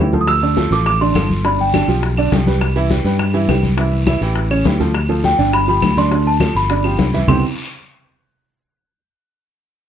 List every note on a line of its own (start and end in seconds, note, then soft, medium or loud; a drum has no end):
0.00 0.66 D2 medium
0.00 0.11 E3 medium
0.00 0.11 E4 medium
0.00 0.11 G4 medium
0.13 0.37 F3 medium
0.13 0.37 F4 medium
0.13 0.37 A4 medium
0.13 high bongo soft
0.13 high conga medium
0.21 0.28 D#6 medium
0.27 0.73 E6 loud
0.27 high bongo medium
0.27 high conga soft
0.27 long guiro medium
0.27 claves medium
0.42 0.55 D3 medium
0.42 0.55 D4 medium
0.42 0.55 D5 medium
0.42 high bongo soft
0.42 high conga soft
0.57 0.69 F3 medium
0.57 0.69 F4 medium
0.57 0.69 A4 medium
0.57 high bongo medium
0.57 high conga medium
0.57 short guiro medium
0.71 1.12 A1 medium
0.71 0.95 F3 medium
0.71 0.96 F4 medium
0.71 0.96 A4 medium
0.71 0.86 D6 medium
0.71 high conga soft
0.71 short guiro medium
0.86 0.94 D6 medium
0.86 high bongo medium
0.86 high conga soft
0.86 long guiro medium
0.86 claves medium
1.01 1.13 D3 medium
1.01 1.13 D4 medium
1.01 1.13 D5 medium
1.01 1.46 C6 medium
1.01 high bongo soft
1.01 high conga soft
1.15 1.83 G1 medium
1.15 1.39 F3 medium
1.15 1.40 F4 medium
1.15 1.40 A4 medium
1.15 high bongo soft
1.15 low bongo medium
1.15 high conga medium
1.15 short guiro medium
1.15 claves medium
1.30 high bongo soft
1.30 high conga medium
1.30 short guiro medium
1.45 1.68 D3 medium
1.45 1.69 D4 medium
1.45 1.69 D5 medium
1.45 1.60 B5 medium
1.45 high bongo medium
1.45 high conga soft
1.45 long guiro medium
1.59 1.87 G5 medium
1.59 high bongo soft
1.59 high conga soft
1.74 1.86 D3 medium
1.74 1.86 D4 medium
1.74 1.86 D5 medium
1.74 high bongo medium
1.74 high conga medium
1.74 short guiro medium
1.74 claves medium
1.88 2.29 B1 medium
1.88 2.12 F3 medium
1.88 2.12 F4 medium
1.88 2.13 G4 medium
1.88 high conga soft
1.88 short guiro medium
2.03 high bongo medium
2.03 high conga soft
2.03 long guiro medium
2.17 2.30 D3 medium
2.17 2.30 D4 medium
2.17 2.30 D5 medium
2.17 high bongo soft
2.17 high conga soft
2.17 claves medium
2.32 3.00 C2 medium
2.32 2.44 F3 medium
2.32 2.44 F4 medium
2.32 2.45 G4 medium
2.32 high bongo soft
2.32 low bongo medium
2.32 high conga medium
2.32 short guiro medium
2.47 2.71 G3 medium
2.47 2.71 G4 medium
2.47 2.71 B4 medium
2.47 high bongo soft
2.47 high conga medium
2.47 short guiro medium
2.61 high bongo medium
2.61 high conga soft
2.61 long guiro medium
2.61 claves medium
2.76 2.88 E3 medium
2.76 2.88 E4 medium
2.76 2.88 E5 medium
2.76 high bongo soft
2.76 high conga soft
2.90 3.03 G3 medium
2.90 3.03 G4 medium
2.90 3.03 B4 medium
2.90 high bongo medium
2.90 high conga medium
2.90 short guiro medium
3.04 3.45 G2 loud
3.04 3.29 G3 medium
3.04 3.29 G4 medium
3.04 3.29 B4 medium
3.04 high conga soft
3.04 short guiro medium
3.19 high bongo medium
3.19 high conga soft
3.19 long guiro medium
3.19 claves medium
3.34 3.46 E3 medium
3.34 3.46 E4 medium
3.34 3.46 E5 medium
3.34 high bongo soft
3.34 high conga soft
3.48 4.16 C2 medium
3.48 3.73 G3 medium
3.48 3.73 G4 medium
3.48 3.73 B4 medium
3.48 high bongo soft
3.48 low bongo medium
3.48 high conga medium
3.48 short guiro medium
3.48 claves medium
3.63 high bongo soft
3.63 high conga medium
3.63 short guiro medium
3.77 4.01 E3 medium
3.77 4.02 E4 medium
3.77 4.02 E5 medium
3.77 high bongo medium
3.77 long guiro medium
3.92 high bongo soft
3.92 high conga soft
4.07 4.19 E3 medium
4.07 4.19 E4 medium
4.07 4.20 E5 medium
4.07 high bongo medium
4.07 high conga loud
4.07 short guiro medium
4.07 claves medium
4.21 4.62 A1 medium
4.21 4.46 E3 medium
4.21 4.46 E4 medium
4.21 4.46 G4 medium
4.21 high conga soft
4.21 short guiro medium
4.36 high bongo medium
4.36 high conga soft
4.36 long guiro medium
4.50 4.63 C#3 medium
4.50 4.63 C#4 medium
4.50 4.63 C#5 medium
4.50 high bongo soft
4.50 high conga soft
4.50 claves medium
4.65 5.33 D2 medium
4.65 4.78 E3 medium
4.65 4.78 E4 medium
4.65 4.78 G4 medium
4.65 high bongo soft
4.65 low bongo medium
4.65 high conga medium
4.65 short guiro medium
4.80 4.92 F3 medium
4.80 4.92 F4 medium
4.80 4.92 A4 medium
4.80 high bongo soft
4.80 high conga medium
4.80 short guiro medium
4.95 high bongo medium
4.95 high conga soft
4.95 long guiro medium
4.95 claves medium
5.09 5.33 F3 medium
5.09 5.33 F4 medium
5.09 5.33 A4 medium
5.09 high bongo soft
5.09 high conga soft
5.24 5.52 G5 medium
5.24 high bongo medium
5.24 high conga medium
5.24 short guiro medium
5.38 5.79 G1 medium
5.38 5.62 D3 medium
5.38 5.63 D4 medium
5.38 5.63 D5 medium
5.38 high conga soft
5.38 short guiro medium
5.53 5.61 B5 loud
5.53 high bongo medium
5.53 high conga soft
5.53 long guiro medium
5.53 claves medium
5.68 5.92 F3 medium
5.68 5.92 F4 medium
5.68 5.92 G4 medium
5.68 5.98 B5 loud
5.68 high bongo soft
5.68 high conga soft
5.82 6.50 D2 medium
5.82 high bongo soft
5.82 low bongo medium
5.82 high conga medium
5.82 short guiro medium
5.82 claves medium
5.97 6.09 D3 medium
5.97 6.09 D4 medium
5.97 6.09 D5 medium
5.97 6.28 C6 loud
5.97 high bongo soft
5.97 high conga medium
5.97 short guiro medium
6.11 6.36 D3 medium
6.11 6.36 D4 medium
6.11 6.36 D5 medium
6.11 high bongo medium
6.11 high conga soft
6.11 long guiro medium
6.26 6.57 A5 medium
6.26 high bongo soft
6.26 high conga soft
6.40 6.65 F3 medium
6.40 6.65 F4 medium
6.40 6.65 A4 medium
6.40 high bongo medium
6.40 high conga medium
6.40 short guiro medium
6.40 claves medium
6.55 6.96 G1 medium
6.55 7.10 B5 medium
6.55 high conga soft
6.55 short guiro medium
6.69 6.82 D3 medium
6.69 6.82 D4 medium
6.69 6.83 D5 medium
6.69 high bongo medium
6.69 high conga soft
6.69 long guiro medium
6.84 7.08 F3 medium
6.84 7.09 F4 medium
6.84 7.09 G4 medium
6.84 high bongo soft
6.84 high conga soft
6.84 claves medium
6.98 7.25 C2 medium
6.98 high bongo soft
6.98 low bongo medium
6.98 high conga medium
6.98 short guiro medium
7.13 7.26 E3 medium
7.13 7.26 E4 medium
7.13 7.26 E5 medium
7.13 high bongo soft
7.13 high conga medium
7.13 short guiro medium
7.27 7.41 C2 medium
7.27 7.42 C3 medium
7.27 7.42 G3 medium
7.27 7.42 B3 medium
7.27 7.42 C4 medium
7.27 7.42 E4 medium
7.27 7.42 G4 medium
7.27 7.42 C6 medium
7.27 low bongo medium
7.27 low conga medium
7.27 long guiro medium
7.27 claves medium